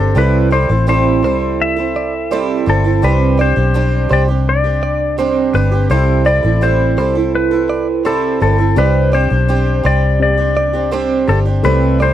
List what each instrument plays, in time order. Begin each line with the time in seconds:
Already playing: fingered electric bass G1, twelve-string acoustic guitar G4, electric slide guitar A4
0.00 twelve-string acoustic guitar C4 D4
0.15 fingered electric bass C2, twelve-string acoustic guitar C3 G3 C4 E4 A4, electric slide guitar B4
0.51 twelve-string acoustic guitar G3 C4 E4 A4, electric slide guitar C5, clean electric guitar D5
0.69 fingered electric bass A1, twelve-string acoustic guitar C4 E4 A4
0.87 twelve-string acoustic guitar C3 G3 C4 E4 A4, electric slide guitar C5
1.22 fingered electric bass C2, twelve-string acoustic guitar G3 C4 E4 A4, clean electric guitar C5
1.62 electric slide guitar E5
1.76 twelve-string acoustic guitar C4 E4 A4
1.96 clean electric guitar D5
2.31 twelve-string acoustic guitar C3 G3 C4 E4 A4, clean electric guitar C5
2.66 fingered electric bass G1, twelve-string acoustic guitar G3 C4 E4 A4, electric slide guitar A4
2.84 twelve-string acoustic guitar C4 E4 A4
3.02 fingered electric bass C2, twelve-string acoustic guitar C3 G3 C4 D4 G4, electric slide guitar B4
3.38 twelve-string acoustic guitar G3 C4 D4 G4, electric slide guitar C5, clean electric guitar D5
3.56 fingered electric bass B1, twelve-string acoustic guitar C4 D4 G4
3.74 twelve-string acoustic guitar G3 C4 D4 G4
4.09 fingered electric bass C2, twelve-string acoustic guitar G3 C4 D4 G4, clean electric guitar C5, electric slide guitar D5
4.28 twelve-string acoustic guitar C4 D4 G4
4.49 electric slide guitar D5
4.64 twelve-string acoustic guitar C4 D4 G4
4.83 clean electric guitar D5
5.18 twelve-string acoustic guitar C3 G3 C4 D4 G4, clean electric guitar C5
5.54 fingered electric bass G1, twelve-string acoustic guitar G3 C4 D4 G4, electric slide guitar B4
5.72 twelve-string acoustic guitar C4 D4 G4
5.90 fingered electric bass C2, twelve-string acoustic guitar C3 G3 C4 E4 A4, electric slide guitar C5
6.25 twelve-string acoustic guitar G3 C4 E4 A4, electric slide guitar D5, clean electric guitar D5
6.43 fingered electric bass A1, twelve-string acoustic guitar C4 E4 A4
6.61 twelve-string acoustic guitar C3 G3 C4 E4 A4, electric slide guitar C5
6.97 fingered electric bass C2, twelve-string acoustic guitar G3 C4 E4 A4, clean electric guitar C5
7.15 twelve-string acoustic guitar C4 E4 A4
7.35 electric slide guitar B4
7.51 twelve-string acoustic guitar C4 E4 A4
7.70 clean electric guitar D5
8.05 twelve-string acoustic guitar C3 G3 C4 E4 A4, electric slide guitar A4, clean electric guitar C5
8.40 fingered electric bass G1, twelve-string acoustic guitar G3 C4 E4 A4, electric slide guitar A4
8.58 twelve-string acoustic guitar C4 E4 A4
8.76 fingered electric bass C2, twelve-string acoustic guitar C3 G3 C4 D4 G4, upright piano C4 G4 D5, electric slide guitar B4
9.12 twelve-string acoustic guitar G3 C4 D4 G4, electric slide guitar C5, clean electric guitar D5
9.30 fingered electric bass B1, twelve-string acoustic guitar C4 D4 G4
9.48 twelve-string acoustic guitar G3 C4 D4 G4
9.83 fingered electric bass C2, twelve-string acoustic guitar G3 C4 D4 G4, clean electric guitar C5, electric slide guitar D5
10.20 upright piano C4 G4 D5, electric slide guitar D5
10.37 twelve-string acoustic guitar C4 D4 G4
10.57 clean electric guitar D5
10.73 twelve-string acoustic guitar C4 D4 G4
10.91 twelve-string acoustic guitar C3 G3 C4 D4 G4, clean electric guitar C5
11.28 fingered electric bass G1, twelve-string acoustic guitar G3 C4 D4 G4, electric slide guitar A4
11.45 twelve-string acoustic guitar C4 D4 G4
11.63 fingered electric bass C2, twelve-string acoustic guitar C3 G3 C4 E4 A4, upright piano A3 C4 G4, electric slide guitar B4
12.00 twelve-string acoustic guitar G3 C4 E4 A4, electric slide guitar C5, clean electric guitar D5